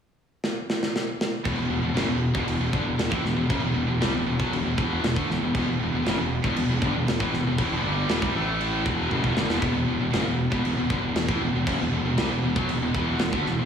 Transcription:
0.44 snare
0.70 snare
0.83 snare
0.96 snare
1.21 snare
1.45 fingered electric bass E1, distorted electric guitar E2 B2, kick, crash
1.58 fingered electric bass E1, distorted electric guitar E2 B2
1.70 fingered electric bass E1, distorted electric guitar E2 B2
1.82 fingered electric bass E1, distorted electric guitar E2 B2
1.94 fingered electric bass F#1, distorted electric guitar F#2 C#3, snare, crash
2.08 fingered electric bass E1, distorted electric guitar E2 B2
2.34 fingered electric bass E1, distorted electric guitar E2 B2, kick
2.47 fingered electric bass E1, distorted electric guitar E2 B2, crash
2.60 fingered electric bass E1, distorted electric guitar E2 B2
2.73 fingered electric bass G1, distorted electric guitar G2 D3, kick
2.85 fingered electric bass E1, distorted electric guitar E2 B2
2.98 fingered electric bass E1, distorted electric guitar E2 B2, snare, crash
3.10 fingered electric bass A1, distorted electric guitar A2 E3, kick
3.24 fingered electric bass E1, distorted electric guitar E2 B2, snare
3.36 fingered electric bass E1, distorted electric guitar E2 B2
3.49 fingered electric bass F#1, distorted electric guitar F#2 C#3, kick, crash
3.63 fingered electric bass E1, distorted electric guitar E2 B2
3.74 fingered electric bass E1, distorted electric guitar E2 B2
3.88 fingered electric bass E1, distorted electric guitar E2 B2
4.01 fingered electric bass C2, distorted electric guitar C3 G3, snare, crash
4.13 fingered electric bass E1, distorted electric guitar E2 B2
4.26 fingered electric bass E1, distorted electric guitar E2 B2
4.39 fingered electric bass B1, distorted electric guitar B2 F#3, kick
4.53 fingered electric bass E1, distorted electric guitar E2 B2, crash
4.66 fingered electric bass E1, distorted electric guitar E2 B2
4.77 fingered electric bass E1, distorted electric guitar E2 B2 E3, kick
5.04 fingered electric bass E1, distorted electric guitar E2 B2, snare, crash
5.16 fingered electric bass D2, distorted electric guitar D3 A3, kick
5.29 fingered electric bass E1, distorted electric guitar E2 B2, snare
5.41 fingered electric bass E1, distorted electric guitar E2 B2
5.55 fingered electric bass E1, distorted electric guitar E2 B2, kick, crash
5.68 fingered electric bass E1, distorted electric guitar E2 B2
5.80 fingered electric bass E1, distorted electric guitar E2 B2
5.93 fingered electric bass E1, distorted electric guitar E2 B2
6.03 fingered electric bass F#1, distorted electric guitar F#2 C#3, snare, crash
6.08 distorted electric guitar F#2 C#3
6.18 fingered electric bass E1, distorted electric guitar E2 B2
6.44 fingered electric bass E1, distorted electric guitar E2 B2, kick
6.56 fingered electric bass E1, distorted electric guitar E2 B2, crash
6.68 fingered electric bass E1, distorted electric guitar E2 B2
6.82 fingered electric bass G1, distorted electric guitar G2 D3, kick
6.95 fingered electric bass E1, distorted electric guitar E2 B2
7.08 fingered electric bass E1, distorted electric guitar E2 B2, snare, crash
7.20 fingered electric bass A1, distorted electric guitar A2 E3, kick
7.33 fingered electric bass E1, distorted electric guitar E2 B2, snare
7.46 fingered electric bass E1, distorted electric guitar E2 B2
7.58 fingered electric bass A1, distorted electric guitar A2 E3, kick, crash
7.71 fingered electric bass E1, distorted electric guitar E2 B2
7.84 fingered electric bass G1, distorted electric guitar G2 D3 G3
8.09 fingered electric bass E1, distorted electric guitar E2 B2, snare, crash
8.22 fingered electric bass C2, distorted electric guitar C3 G3, kick
8.35 fingered electric bass A1, distorted electric guitar A2 E3 A3
8.61 crash
8.86 fingered electric bass E1, distorted electric guitar E2 B2 E3, kick
9.11 fingered electric bass F#1, distorted electric guitar F#2 C#3, high tom
9.24 fingered electric bass E1, distorted electric guitar E2 B2, kick
9.36 fingered electric bass G1, distorted electric guitar G2 D3, snare
9.49 fingered electric bass E1, distorted electric guitar E2 B2, snare
9.62 fingered electric bass E1, distorted electric guitar E2 B2, kick, crash
9.75 fingered electric bass E1, distorted electric guitar E2 B2
9.88 fingered electric bass E1, distorted electric guitar E2 B2
10.01 fingered electric bass E1, distorted electric guitar E2 B2
10.13 fingered electric bass F#1, distorted electric guitar F#2 C#3, snare, crash
10.26 fingered electric bass E1, distorted electric guitar E2 B2
10.51 fingered electric bass E1, distorted electric guitar E2 B2, kick
10.64 fingered electric bass E1, distorted electric guitar E2 B2, crash
10.77 fingered electric bass E1, distorted electric guitar E2 B2
10.90 fingered electric bass G1, distorted electric guitar G2 D3, kick
11.02 fingered electric bass E1, distorted electric guitar E2 B2
11.15 fingered electric bass E1, distorted electric guitar E2 B2, snare, crash
11.28 fingered electric bass A1, distorted electric guitar A2 E3, kick
11.40 fingered electric bass E1, distorted electric guitar E2 B2
11.53 fingered electric bass E1, distorted electric guitar E2 B2
11.67 fingered electric bass F#1, distorted electric guitar F#2 C#3, kick, crash
11.78 fingered electric bass E1, distorted electric guitar E2 B2
11.91 fingered electric bass E1, distorted electric guitar E2 B2
12.04 fingered electric bass E1, distorted electric guitar E2 B2
12.17 fingered electric bass C2, distorted electric guitar C3 G3, snare, crash
12.30 fingered electric bass E1, distorted electric guitar E2 B2
12.43 fingered electric bass E1, distorted electric guitar E2 B2
12.56 fingered electric bass B1, distorted electric guitar B2 F#3, kick
12.68 fingered electric bass E1, distorted electric guitar E2 B2, crash
12.81 fingered electric bass E1, distorted electric guitar E2 B2
12.94 fingered electric bass E1, distorted electric guitar E2 B2 E3, kick
13.19 fingered electric bass E1, distorted electric guitar E2 B2, snare, crash
13.32 fingered electric bass D2, distorted electric guitar D3 A3, kick
13.45 fingered electric bass E1, distorted electric guitar E2 B2, snare
13.58 fingered electric bass E1, distorted electric guitar E2 B2

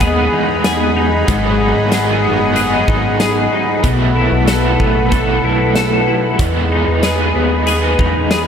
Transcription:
Already playing: analog synth bass D#2, clean electric guitar B3 D#4, analog synth pad G#4 D#5 F#5 B5
0.00 overdriven electric guitar G#3, clean electric guitar G#4, kick, closed hi-hat
0.05 overdriven electric guitar B3 D#4
0.32 analog synth bass E2, clean electric guitar D#4
0.64 clean electric guitar G#4, snare, closed hi-hat, tambourine
0.96 clean electric guitar D#4
1.27 analog synth bass G#1, overdriven electric guitar G#2 D#3 F#3 B3 D#4, clean electric guitar G#2, analog synth pad D#5 F#5, kick, closed hi-hat
1.60 clean electric guitar D#4
1.76 analog synth bass G#1
1.91 overdriven electric guitar D#3 F#3 B3 D#4, clean electric guitar G#4, snare, closed hi-hat, tambourine
2.24 analog synth bass F#1, clean electric guitar B3
2.54 overdriven electric guitar D#3 F#3, clean electric guitar G#4, closed hi-hat
2.60 overdriven electric guitar B3 D#4
2.88 analog synth bass G#1, clean electric guitar D#4, kick
3.20 clean electric guitar G#4, snare, closed hi-hat, tambourine
3.52 clean electric guitar D#4
3.83 analog synth bass B1, overdriven electric guitar B2 F#3 A3 E4, clean electric guitar B2, analog synth pad A4 B4 F#5 B5, kick, closed hi-hat
4.16 clean electric guitar E4
4.32 analog synth bass B1
4.46 overdriven electric guitar B2 F#3 A3 E4, clean electric guitar A4, snare, closed hi-hat, tambourine
4.80 analog synth bass A1, clean electric guitar B3, kick
5.09 overdriven electric guitar B2 F#3, clean electric guitar A4, kick, closed hi-hat
5.15 overdriven electric guitar A3 E4
5.44 analog synth bass B1, clean electric guitar E4
5.75 clean electric guitar A4, snare, closed hi-hat, tambourine
6.08 clean electric guitar E4
6.39 analog synth bass E2, overdriven electric guitar E3 G#3 B3 D#4, analog synth pad G#4 D#5 B5, kick, closed hi-hat
6.72 clean electric guitar D#4
6.88 analog synth bass E2
7.03 overdriven electric guitar G#3 B3 D#4, clean electric guitar G#4, snare, closed hi-hat, tambourine
7.35 analog synth bass D#2, clean electric guitar B3
7.67 overdriven electric guitar G#3 B3, clean electric guitar G#4, closed hi-hat
7.73 overdriven electric guitar D#4
7.99 analog synth bass E2, clean electric guitar D#4, kick
8.31 clean electric guitar G#4, snare, closed hi-hat, tambourine

